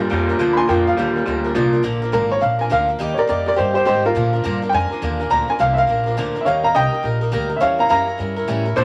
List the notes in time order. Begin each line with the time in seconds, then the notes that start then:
0.00 F3 A#3 D4
0.10 F2 A#2 F3 G3 A#3 D4 A#4
0.29 F3 A#3 D4 A#4
0.39 D2 A#2 D3 F3 A#3 D4 A#4
0.53 G#5 B5
0.57 F3 A#3 D4 A#4 C6
0.69 F2 A#2 D3 F3 A#3 D4 A#4 G5
0.87 F3 A#3 D4 A#4 F5
0.97 D#2 A#2 D3 F3 G3 A#3 D4 A#4
1.16 F3 A#3 D4 A#4
1.26 D2 A#2 F3 G3 A#3 D4 A#4
1.44 F3 A#3 D4 A#4
1.55 C2 A#2 D3 F3 A#3 D4 A#4
1.73 F3 A#3 D4 A#4
1.83 A#1 A#2 D3 F3 A#3 D4 A#4
2.02 F3 A#3 D4 A#4
2.12 G#1 A#2 D3 F3 A#3 D4 A#4
2.31 F3 A#3 D4 A#4 C#5
2.41 A#1 F3 A#3 D4 A#4 F5
2.59 F3 A#3 D4 A#4 G#5
2.70 D2 A#2 D3 F3 A#3 D4 A#4 F5
2.88 F3 A#3 D4 A#4
2.99 D#2 D#3 G3 A#3 D#4 G4
3.14 G4 C#5
3.19 A#3 D#4 A#4 D5, muted upright bass stroke
3.27 F2 D#3 G3 A#3 D#4 G4 A#4 D5
3.46 A#3 D#4 G4 A#4 D5
3.56 G2 G3 A#3 D#4 G4 C5
3.74 A#3 D#4 G4 C5
3.85 G#2 D#3 G3 A#3 D#4 G4 C5
4.04 A#3 D#4 F4 G4 A#4
4.15 A#2 D3 F3 A#3 D4 A#4
4.33 F3 A#3 D4 A#4
4.44 G2 A#2 D3 F3 A#3 D4 A#4
4.62 F3 A#3 D4 A#4
4.69 F2 F3 A#3 G5
4.74 D4 A#4 G#5
4.91 F3 A#3 D4 A#4
5.02 D#2 A#2 D3 F3 A#3 D4 A#4
5.20 F3 A#3 D4 A#4
5.30 D2 A#2 D3 F3 A#3 D4 A#4 A#5
5.48 F3 A#3 D4 A#4 G#5, muted upright bass stroke
5.59 C2 A#2 D3 F3 A#3 D4 A#4 F5
5.73 A#4 E5
5.78 F3 A#3 D4 F5
5.87 A#1 F3 A#3 D4 A#4
6.06 F3 A#3 D4 A#4
6.17 D2 A#2 D3 F3 A#3 D4 A#4
6.35 F3 A#3 D4 A#4, muted upright bass stroke
6.41 E5
6.45 D#2 D#3 G3 A#3 D#4 A#4 C#5 F5
6.64 A#3 D#4 A#4 F5 A#5
6.74 C2 D#3 G3 A#3 D#4 A#4 D#5 G5
6.92 A#3 D#4 A#4
7.03 A#1 G3 A#3 D#4 A#4
7.21 A#3 D#4 A#4
7.32 D2 D#3 G3 A#3 D#4 A#4
7.49 A#3 D#4 A#4
7.56 E5
7.60 E2 E3 G3 C#4 E4 A#4 C#5 F5
7.79 C#4 E4 A#4 F5 A#5
7.89 F#2 E3 G3 C#4 E4 A#4 F5 A#5
8.07 C#4 E4 A#4
8.18 G2 G3 C#4 E4 A#4
8.36 C#4 E4 A#4
8.48 A2 E3 G3 C#4 E4 A#4
8.66 C#4 E4 A#4
8.76 A#2 D3 F3 A#3 D4 A#4 C5